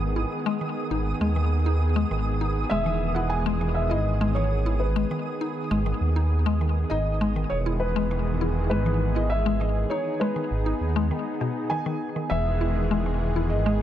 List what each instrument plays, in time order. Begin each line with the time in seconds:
Already playing: detuned saw bass G#1, analog synth pad D#3 E3 G#3 B3 G#4, synth texture D#6
0.16 synth arpeggio sound E4
0.46 synth arpeggio sound G#3
0.61 synth arpeggio sound D#3
0.91 detuned saw bass G#1, synth arpeggio sound D#4
1.21 detuned saw bass D#2, synth arpeggio sound G#3
1.36 synth arpeggio sound D#3
1.66 synth arpeggio sound D#4
1.96 synth arpeggio sound G#3
2.11 detuned saw bass G#1, synth arpeggio sound D#3
2.41 synth arpeggio sound D#4
2.70 detuned saw bass E1, analog synth pad E3 G#3, synth arpeggio sound G#3, felt piano E5
2.86 synth arpeggio sound E3
3.15 synth arpeggio sound E4, felt piano F#5
3.30 felt piano G#5
3.46 synth arpeggio sound G#3
3.61 synth arpeggio sound E3
3.75 felt piano E5
3.90 detuned saw bass G#1, synth arpeggio sound E4, felt piano D#5
4.21 synth arpeggio sound G#3
4.35 synth arpeggio sound E3, felt piano C#5
4.66 synth arpeggio sound E4
4.80 felt piano B4
4.96 synth arpeggio sound G#3
5.11 synth arpeggio sound D#3
5.41 synth arpeggio sound D#4
5.71 detuned saw bass G#1, synth arpeggio sound G#3
5.86 synth arpeggio sound D#3
6.01 detuned saw bass D#2
6.16 synth arpeggio sound D#4
6.46 synth arpeggio sound G#3
6.61 synth arpeggio sound D#3
6.90 detuned saw bass G#1, synth arpeggio sound D#4, felt piano D#5
7.21 synth arpeggio sound G#3
7.36 synth arpeggio sound D#3
7.50 detuned saw bass E1, analog synth pad D#3 E3 G#3 B3 G#4, felt piano C#5
7.66 synth arpeggio sound E4
7.80 felt piano B4
7.96 synth arpeggio sound G#3
8.11 synth arpeggio sound E3
8.41 synth arpeggio sound E4
8.70 detuned saw bass G#1, synth arpeggio sound G#3, felt piano B4
8.86 synth arpeggio sound E3
9.15 synth arpeggio sound E4, felt piano D#5
9.30 felt piano E5
9.46 synth arpeggio sound G#3
9.60 synth arpeggio sound E3, felt piano D#5
9.90 analog synth pad B3 D#4, synth arpeggio sound D#4, felt piano C#5
10.20 synth arpeggio sound G#3, felt piano B4
10.36 synth arpeggio sound D#3
10.51 detuned saw bass G#1
10.66 synth arpeggio sound D#4
10.81 detuned saw bass D#2
10.96 synth arpeggio sound G#3
11.11 synth arpeggio sound D#3
11.41 synth arpeggio sound B2
11.70 synth arpeggio sound D#3, felt piano G#5
11.86 synth arpeggio sound D#3
12.16 synth arpeggio sound D#3
12.30 detuned saw bass E1, analog synth pad D#3 E3 G#3 B3 G#4, synth arpeggio sound E3, felt piano E5
12.61 synth arpeggio sound E4
12.91 synth arpeggio sound G#3
13.06 synth arpeggio sound E3
13.36 synth arpeggio sound E4
13.50 detuned saw bass G#1, felt piano D#5
13.66 synth arpeggio sound G#3